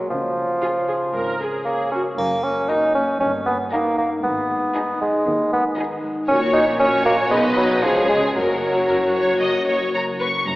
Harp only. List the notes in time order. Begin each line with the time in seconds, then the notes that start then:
Already playing: B2 F#3 A#3 F#4
0.10 C#3
0.37 C#4
0.62 C#5
0.89 C#4
1.14 G#3
1.40 C#4
1.66 C#5
1.91 C#4
2.18 F#2
2.44 A#3
2.70 C#4
2.96 A#3
3.21 G2
3.47 A#3
3.73 D#4
3.98 A#3
4.24 G#2
4.49 G#3
4.75 D#4
5.01 G#3
5.26 D#3
5.52 G#3
5.78 D#4
6.03 G#3
6.29 A#2
6.55 C#4
6.81 F#4
7.32 B2
7.57 F#4 D#5
7.84 C#3
8.09 C#4 C#5
8.36 F#2
8.62 A#3
8.88 C#4
9.15 A#3
9.41 C#3
9.68 A#3
9.94 C#4
10.20 A#3
10.47 F#2